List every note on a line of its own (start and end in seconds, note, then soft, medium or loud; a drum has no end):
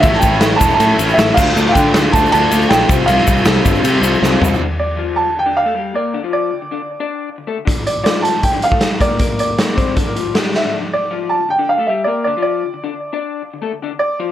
0.00 0.16 A1 medium
0.00 0.21 A2 medium
0.00 0.21 E3 loud
0.00 0.23 A3 loud
0.00 0.15 E5 loud
0.00 kick loud
0.00 ride medium
0.00 shaker medium
0.04 0.23 C#4 loud
0.04 0.23 E4 loud
0.13 0.23 A5 medium
0.13 snare soft
0.19 0.35 A1 medium
0.19 0.40 A2 medium
0.19 0.61 G5 medium
0.19 ride medium
0.19 shaker loud
0.23 0.41 E3 medium
0.23 0.41 A3 medium
0.23 0.42 C#4 medium
0.23 0.42 E4 loud
0.23 kick medium
0.41 0.54 A1 medium
0.41 0.58 A2 medium
0.41 0.59 E3 medium
0.41 0.60 A3 medium
0.41 0.61 C#4 loud
0.41 0.60 E4 loud
0.41 snare loud
0.41 ride loud
0.41 shaker medium
0.56 0.78 A2 loud
0.56 0.79 E3 loud
0.56 0.72 A5 medium
0.61 0.73 E1 medium
0.61 0.80 A3 loud
0.61 0.80 C#4 loud
0.61 0.81 E4 loud
0.61 kick medium
0.61 ride medium
0.61 shaker loud
0.70 1.17 A5 medium
0.70 shaker soft
0.79 0.97 A2 medium
0.79 0.93 A2 medium
0.79 0.98 E3 medium
0.79 0.99 A3 medium
0.79 1.00 C#4 medium
0.79 1.00 E4 medium
0.79 ride medium
0.79 shaker medium
0.98 1.11 A1 medium
0.98 1.16 A2 medium
0.98 1.17 E3 medium
0.98 1.18 A3 loud
0.98 1.18 C#4 medium
0.98 1.18 E4 medium
0.98 ride medium
0.98 shaker medium
1.09 shaker soft
1.14 1.36 A2 medium
1.14 1.36 E5 medium
1.18 1.31 A1 medium
1.18 1.35 E3 loud
1.18 1.35 A3 loud
1.18 1.37 C#4 loud
1.18 1.37 E4 loud
1.18 snare loud
1.18 ride loud
1.18 shaker medium
1.34 1.50 D2 medium
1.34 1.54 D3 loud
1.34 1.55 A3 medium
1.34 1.55 D4 loud
1.34 1.57 F4 medium
1.34 1.67 F5 medium
1.34 kick loud
1.34 crash loud
1.34 shaker medium
1.55 1.68 D2 medium
1.55 1.73 D3 loud
1.55 1.74 A3 loud
1.55 1.75 D4 loud
1.55 1.76 F4 loud
1.55 shaker medium
1.66 1.76 F5 medium
1.66 snare soft
1.72 1.92 D3 medium
1.72 1.88 D3 medium
1.72 1.93 A3 medium
1.72 1.94 D4 loud
1.72 2.13 G5 medium
1.72 kick medium
1.72 ride medium
1.77 1.94 F4 medium
1.77 shaker medium
1.93 2.06 D2 medium
1.93 2.11 D3 medium
1.93 2.11 A3 loud
1.93 2.12 D4 loud
1.93 2.13 F4 loud
1.93 snare loud
1.93 ride loud
1.93 shaker medium
2.12 2.26 D2 medium
2.12 2.31 D3 loud
2.12 2.31 A3 medium
2.12 2.32 D4 loud
2.12 2.33 F4 loud
2.12 2.30 A5 medium
2.12 kick medium
2.12 ride medium
2.12 shaker loud
2.26 shaker soft
2.32 2.46 D2 medium
2.32 2.49 D3 medium
2.32 2.50 A3 medium
2.32 2.51 D4 medium
2.32 2.51 F4 loud
2.32 2.72 A5 loud
2.32 ride loud
2.32 shaker medium
2.50 2.65 D2 medium
2.50 2.68 D3 medium
2.50 2.69 A3 medium
2.50 2.70 D4 loud
2.50 2.71 F4 medium
2.50 ride medium
2.50 shaker loud
2.61 shaker soft
2.69 2.83 A#1 medium
2.69 2.88 D3 loud
2.69 2.88 A3 loud
2.69 2.89 D4 loud
2.69 2.91 F4 loud
2.69 3.09 G5 medium
2.69 snare loud
2.69 ride medium
2.73 shaker medium
2.88 3.02 C2 loud
2.88 3.07 C3 medium
2.88 3.07 F3 loud
2.88 3.08 G3 loud
2.88 3.08 C4 loud
2.88 3.08 F4 loud
2.88 kick loud
2.88 ride medium
2.88 shaker loud
3.06 3.20 C2 medium
3.06 3.24 C3 loud
3.06 3.25 F3 loud
3.06 3.25 G3 loud
3.06 3.26 C4 loud
3.06 3.27 F4 loud
3.06 4.18 F5 medium
3.06 ride loud
3.06 shaker medium
3.18 snare soft
3.26 3.40 C2 medium
3.26 3.42 C3 medium
3.26 3.44 F3 medium
3.26 3.44 G3 medium
3.26 3.44 C4 medium
3.26 3.44 F4 medium
3.26 kick medium
3.26 ride medium
3.26 shaker loud
3.37 shaker soft
3.43 3.58 C2 medium
3.43 3.62 C3 medium
3.43 3.62 F3 medium
3.43 3.62 G3 loud
3.43 3.64 C4 medium
3.43 3.64 F4 medium
3.43 snare loud
3.43 ride loud
3.43 shaker medium
3.47 3.65 C3 medium
3.47 3.66 G3 loud
3.47 3.67 F4 medium
3.63 3.78 G1 medium
3.63 3.81 C3 loud
3.63 3.82 F3 medium
3.63 3.83 G3 loud
3.63 3.83 C4 loud
3.63 3.84 F4 loud
3.63 kick medium
3.63 ride medium
3.63 shaker medium
3.75 shaker soft
3.83 4.00 C3 medium
3.83 3.96 C3 medium
3.83 4.00 F3 medium
3.83 4.02 G3 medium
3.83 4.02 C4 medium
3.83 4.02 F4 medium
3.83 ride loud
3.83 shaker medium
4.01 4.15 C2 medium
4.01 4.19 C3 medium
4.01 4.19 F3 medium
4.01 4.20 G3 medium
4.01 4.20 C4 medium
4.01 4.21 F4 medium
4.01 ride medium
4.01 shaker loud
4.14 shaker soft
4.20 4.35 C2 medium
4.20 4.38 C3 loud
4.20 4.39 F3 loud
4.20 4.40 G3 medium
4.20 4.40 C4 loud
4.20 4.40 F4 loud
4.20 snare medium
4.25 shaker medium
4.40 4.54 C2 medium
4.40 4.59 C3 medium
4.40 4.59 F3 medium
4.40 4.60 G3 medium
4.40 4.60 C4 medium
4.40 4.60 F4 medium
4.40 floor tom medium
4.44 shaker medium
4.54 shaker soft
4.60 4.68 D3 medium
4.60 4.70 D4 medium
4.69 4.79 D3 medium
4.79 5.19 D5 medium
4.79 muted clean electric guitar stroke soft
4.97 5.26 F3 medium
4.97 5.27 F4 medium
5.16 5.37 A5 medium
5.29 5.36 D3 medium
5.37 5.45 D3 medium
5.37 5.58 G5 medium
5.46 5.65 D3 medium
5.46 5.65 D4 medium
5.57 5.96 F5 medium
5.65 5.74 A3 medium
5.65 5.75 A4 medium
5.75 5.94 G3 medium
5.75 5.94 G4 medium
5.94 6.13 A#3 medium
5.94 6.14 A#4 medium
5.94 6.32 D5 medium
6.14 6.23 D3 medium
6.14 6.23 D4 medium
6.23 6.52 F3 medium
6.23 6.52 F4 medium
6.33 7.44 D5 medium
6.53 6.61 D3 medium
6.62 6.70 D3 medium
6.71 6.80 D3 medium
6.71 6.81 D4 medium
6.82 6.97 D3 medium
7.00 7.28 D4 medium
7.00 7.28 D5 medium
7.29 muted clean electric guitar stroke soft
7.38 7.48 D3 medium
7.47 7.57 A3 medium
7.47 7.57 A4 medium
7.58 7.64 D3 medium
7.65 7.75 D3 medium
7.65 7.76 D4 medium
7.65 kick medium
7.65 closed hi-hat medium
7.76 7.85 D3 medium
7.87 8.03 D5 medium
7.87 muted clean electric guitar stroke soft
7.87 closed hi-hat medium
8.03 8.32 F3 medium
8.03 8.33 F4 medium
8.03 8.25 D5 medium
8.03 snare medium
8.03 closed hi-hat medium
8.22 8.41 A5 medium
8.22 closed hi-hat medium
8.32 8.42 D3 medium
8.43 8.50 D3 medium
8.43 8.63 G5 medium
8.43 kick medium
8.43 closed hi-hat medium
8.51 8.71 D3 medium
8.51 8.71 D4 medium
8.62 9.03 F5 medium
8.62 closed hi-hat soft
8.71 8.80 A3 medium
8.71 8.81 A4 medium
8.71 kick medium
8.81 9.00 G3 medium
8.81 9.00 G4 medium
8.81 snare medium
8.81 closed hi-hat medium
9.00 9.19 A#3 medium
9.00 9.20 A#4 medium
9.00 9.38 D5 medium
9.00 kick medium
9.00 closed hi-hat medium
9.19 9.75 A#3 medium
9.19 9.76 A#4 medium
9.19 kick medium
9.19 closed hi-hat medium
9.39 10.58 D5 medium
9.39 closed hi-hat soft
9.58 snare medium
9.58 closed hi-hat medium
9.75 9.95 C4 medium
9.75 9.96 C5 medium
9.75 kick medium
9.75 closed hi-hat soft
9.95 10.05 D3 medium
9.95 10.06 D4 medium
9.95 kick medium
9.95 closed hi-hat medium
10.06 10.15 A#3 medium
10.06 10.16 A#4 medium
10.14 10.34 F3 medium
10.14 10.34 F4 medium
10.14 closed hi-hat soft
10.33 10.62 G3 medium
10.33 10.63 G4 medium
10.33 snare medium
10.33 closed hi-hat medium
10.54 10.73 E5 medium
10.54 snare soft
10.63 10.71 D3 medium
10.63 10.71 D4 medium
10.72 10.82 D3 medium
10.72 10.82 D4 medium
10.83 10.91 D3 medium
10.93 11.33 D5 medium
10.93 muted clean electric guitar stroke soft
11.11 11.40 F3 medium
11.11 11.41 F4 medium
11.29 11.50 A5 medium
11.40 11.48 D3 medium
11.49 11.57 D3 medium
11.49 11.70 G5 medium
11.59 11.78 D3 medium
11.59 11.78 D4 medium
11.69 11.89 F5 medium
11.78 11.88 A3 medium
11.78 11.88 A4 medium
11.87 12.06 G3 medium
11.87 12.07 G4 medium
11.87 12.06 E5 medium
12.04 12.26 A#3 medium
12.04 12.27 A#4 medium
12.04 12.23 D5 medium
12.24 12.36 D3 medium
12.24 12.36 D4 medium
12.24 12.41 D5 medium
12.37 12.65 F3 medium
12.37 12.66 F4 medium
12.42 13.56 D5 medium
12.65 12.73 D3 medium
12.74 12.82 D3 medium
12.84 12.92 D3 medium
12.84 12.94 D4 medium
12.94 13.10 D3 medium
13.13 13.42 D4 medium
13.13 13.42 D5 medium
13.43 muted clean electric guitar stroke soft
13.54 13.63 D3 medium
13.62 13.71 A3 medium
13.62 13.72 A4 medium
13.73 13.81 D3 medium
13.82 13.91 D3 medium
13.82 13.91 D4 medium
13.93 14.00 D3 medium
13.99 14.32 D5 medium
13.99 muted clean electric guitar stroke medium
14.20 14.32 F3 medium
14.20 14.32 F4 medium